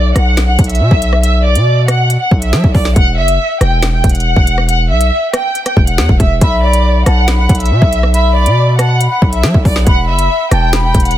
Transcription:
0.00 0.13 B1 loud
0.00 0.13 D5 medium
0.16 0.57 B1 loud
0.16 0.46 F#5 medium
0.16 cross-stick loud
0.16 closed hi-hat medium
0.37 snare loud
0.37 closed hi-hat medium
0.48 0.64 F#5 medium
0.59 0.82 B1 loud
0.59 kick medium
0.59 closed hi-hat medium
0.64 closed hi-hat medium
0.69 1.20 E5 medium
0.69 closed hi-hat medium
0.75 closed hi-hat medium
0.80 0.91 B2 loud
0.91 1.57 B1 loud
0.91 kick medium
1.02 closed hi-hat medium
1.13 cross-stick medium
1.23 1.39 E5 loud
1.23 closed hi-hat medium
1.45 1.85 D5 medium
1.55 2.17 B2 loud
1.55 closed hi-hat medium
1.88 2.18 F#5 medium
1.88 cross-stick loud
1.88 closed hi-hat medium
2.10 closed hi-hat medium
2.21 2.37 F#5 medium
2.31 2.54 B1 loud
2.31 kick medium
2.42 2.72 E5 medium
2.42 closed hi-hat medium
2.53 2.63 F#3 loud
2.53 snare loud
2.64 2.74 B1 loud
2.64 kick loud
2.75 2.95 B1 loud
2.75 2.91 D5 medium
2.75 kick loud
2.75 open hi-hat medium
2.85 snare medium
2.96 3.19 E1 loud
2.96 3.12 F#5 loud
2.96 kick loud
2.96 closed hi-hat medium
3.18 3.38 F#1 loud
3.18 3.58 E5 loud
3.28 closed hi-hat medium
3.61 4.02 E1 loud
3.61 3.91 G5 medium
3.61 cross-stick loud
3.61 closed hi-hat medium
3.83 snare loud
3.83 closed hi-hat medium
3.93 4.10 G5 medium
4.04 4.35 E1 loud
4.04 kick medium
4.04 closed hi-hat medium
4.09 closed hi-hat medium
4.15 4.66 F#5 loud
4.15 closed hi-hat medium
4.20 closed hi-hat soft
4.36 4.92 E1 loud
4.36 kick loud
4.47 closed hi-hat medium
4.58 cross-stick medium
4.69 4.85 F#5 loud
4.69 closed hi-hat medium
4.90 5.11 B1 loud
4.90 5.31 E5 medium
5.01 closed hi-hat medium
5.33 5.64 G5 medium
5.33 cross-stick loud
5.33 closed hi-hat medium
5.55 closed hi-hat soft
5.66 5.82 G5 medium
5.66 cross-stick medium
5.66 closed hi-hat medium
5.77 6.00 E1 loud
5.77 kick medium
5.87 6.18 F#5 medium
5.87 closed hi-hat medium
5.98 6.09 E2 loud
5.98 snare loud
6.09 6.19 E1 loud
6.09 kick loud
6.20 6.41 E1 loud
6.20 6.36 E5 medium
6.20 kick loud
6.20 closed hi-hat medium
6.41 7.04 B1 loud
6.41 6.58 E5 loud
6.41 7.02 B5 loud
6.41 kick loud
6.41 closed hi-hat medium
6.63 7.04 D5 medium
6.73 closed hi-hat medium
7.06 7.48 B1 loud
7.06 7.37 F#5 medium
7.06 7.27 A5 medium
7.06 cross-stick loud
7.06 closed hi-hat medium
7.28 7.68 B5 loud
7.28 snare loud
7.28 closed hi-hat medium
7.39 7.55 F#5 medium
7.49 7.72 B1 loud
7.49 kick medium
7.49 closed hi-hat medium
7.55 closed hi-hat medium
7.60 8.11 E5 loud
7.60 closed hi-hat medium
7.66 closed hi-hat soft
7.71 7.81 B2 loud
7.82 8.48 B1 loud
7.82 kick loud
7.93 closed hi-hat medium
8.03 cross-stick medium
8.14 8.30 E5 loud
8.14 8.75 B5 loud
8.14 closed hi-hat medium
8.36 8.76 D5 medium
8.46 9.08 B2 loud
8.46 closed hi-hat medium
8.79 9.09 F#5 medium
8.79 8.99 A5 medium
8.79 cross-stick loud
8.79 closed hi-hat medium
9.00 9.41 B5 loud
9.00 closed hi-hat medium
9.11 9.27 F#5 medium
9.22 9.45 B1 loud
9.22 kick medium
9.33 9.63 E5 medium
9.33 closed hi-hat medium
9.43 9.54 F#3 loud
9.43 snare loud
9.54 9.65 B1 loud
9.54 kick loud
9.65 9.86 B1 loud
9.65 9.81 D5 medium
9.65 kick loud
9.65 open hi-hat medium
9.76 snare medium
9.87 10.10 E1 loud
9.87 10.03 F#5 loud
9.87 10.48 B5 loud
9.87 kick loud
9.87 closed hi-hat medium
10.08 10.29 F#1 loud
10.08 10.49 E5 loud
10.19 closed hi-hat medium
10.51 10.93 E1 loud
10.51 10.82 G5 medium
10.51 10.72 A5 medium
10.51 cross-stick loud
10.51 closed hi-hat medium
10.73 11.14 B5 loud
10.73 snare loud
10.73 closed hi-hat medium
10.84 11.00 G5 medium
10.95 11.18 E1 loud
10.95 kick medium
10.95 closed hi-hat medium
11.00 closed hi-hat medium
11.05 11.18 F#5 loud
11.05 closed hi-hat medium
11.11 closed hi-hat medium

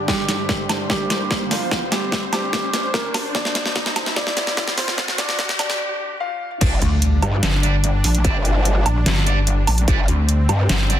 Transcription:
0.00 5.76 G2 medium
0.00 5.76 D3 medium
0.00 5.76 D4 medium
0.00 5.76 G4 medium
0.00 riser medium
0.08 0.82 G3 medium
0.08 0.82 G4 medium
0.08 5.76 C5 medium
0.08 kick medium
0.08 snare medium
0.29 snare medium
0.29 closed hi-hat medium
0.49 kick medium
0.49 snare medium
0.69 snare medium
0.69 closed hi-hat medium
0.69 low woodblock medium
0.90 1.43 G3 medium
0.90 1.43 G4 medium
0.90 kick loud
0.90 snare medium
1.10 snare medium
1.10 closed hi-hat medium
1.31 kick loud
1.31 snare medium
1.51 1.78 F3 medium
1.51 1.78 F4 medium
1.51 snare medium
1.51 open hi-hat medium
1.71 kick loud
1.71 snare medium
1.92 2.19 G3 medium
1.92 2.19 G4 medium
1.92 snare medium
1.92 closed hi-hat medium
2.12 kick loud
2.12 snare medium
2.33 2.86 G3 medium
2.33 2.86 G4 medium
2.33 snare medium
2.33 closed hi-hat medium
2.33 low woodblock medium
2.53 kick loud
2.53 snare medium
2.74 snare medium
2.74 closed hi-hat medium
2.94 3.21 A#3 medium
2.94 3.21 A#4 medium
2.94 kick loud
2.94 snare medium
3.14 snare medium
3.14 open hi-hat medium
3.14 low woodblock medium
3.35 4.08 D4 medium
3.35 4.08 D5 loud
3.35 kick loud
3.35 snare medium
3.45 snare medium
3.55 snare medium
3.55 closed hi-hat medium
3.66 snare medium
3.76 kick medium
3.76 snare medium
3.86 snare medium
3.96 snare loud
3.96 closed hi-hat medium
3.96 low woodblock medium
4.06 snare medium
4.16 4.70 D4 medium
4.16 4.70 D5 loud
4.16 kick loud
4.16 snare loud
4.27 snare medium
4.37 snare loud
4.37 closed hi-hat medium
4.47 snare medium
4.57 kick loud
4.57 snare loud
4.68 snare medium
4.78 5.05 C4 medium
4.78 5.05 C5 medium
4.78 snare loud
4.78 open hi-hat loud
4.88 snare medium
4.98 kick loud
4.98 snare loud
5.08 snare medium
5.18 5.46 D4 medium
5.18 5.46 D5 medium
5.18 snare loud
5.18 closed hi-hat medium
5.29 snare medium
5.39 kick loud
5.39 snare loud
5.49 snare loud
5.59 6.12 D4 medium
5.59 6.12 D5 loud
5.59 snare loud
5.59 closed hi-hat medium
5.59 low woodblock medium
5.70 snare medium
5.70 closed hi-hat soft
6.20 6.48 F4 medium
6.20 6.48 F5 medium
6.61 6.80 G1 loud
6.61 11.00 D3 medium
6.61 11.00 G3 medium
6.61 6.73 G3 medium
6.61 6.73 D4 medium
6.61 9.87 D4 medium
6.61 6.73 D5 medium
6.61 kick loud
6.61 closed hi-hat medium
6.61 crash loud
6.61 impact medium
6.82 7.21 D2 loud
6.82 closed hi-hat medium
7.02 closed hi-hat medium
7.22 7.41 G2 loud
7.22 closed hi-hat medium
7.22 low woodblock medium
7.43 8.03 G1 loud
7.43 snare loud
7.43 closed hi-hat medium
7.63 7.75 G3 medium
7.63 7.75 D4 medium
7.63 7.75 D5 loud
7.63 closed hi-hat medium
7.84 closed hi-hat medium
8.04 8.23 A#1 loud
8.04 open hi-hat loud
8.15 closed hi-hat medium
8.24 8.84 G1 loud
8.24 8.36 G3 medium
8.24 8.36 D4 medium
8.24 8.36 D5 medium
8.24 kick loud
8.24 closed hi-hat medium
8.45 closed hi-hat medium
8.65 closed hi-hat medium
8.86 9.05 A#1 loud
8.86 closed hi-hat medium
8.86 low woodblock medium
9.06 9.66 G1 medium
9.06 snare loud
9.06 closed hi-hat medium
9.26 9.38 G3 medium
9.26 9.38 D4 medium
9.26 9.38 D5 medium
9.26 closed hi-hat medium
9.47 closed hi-hat medium
9.67 9.86 A#1 loud
9.67 open hi-hat medium
9.67 low woodblock medium
9.78 closed hi-hat medium
9.87 10.07 G1 medium
9.87 9.99 G3 medium
9.87 11.00 C4 medium
9.87 9.99 D4 medium
9.87 9.99 D5 medium
9.87 kick loud
9.87 closed hi-hat medium
10.08 10.47 D2 loud
10.08 closed hi-hat medium
10.29 closed hi-hat medium
10.49 10.68 G2 loud
10.49 closed hi-hat medium
10.49 low woodblock medium
10.69 11.00 G1 loud
10.69 snare loud
10.69 closed hi-hat medium
10.89 11.00 G3 medium
10.89 11.00 D4 medium
10.89 11.00 D5 medium
10.89 closed hi-hat medium

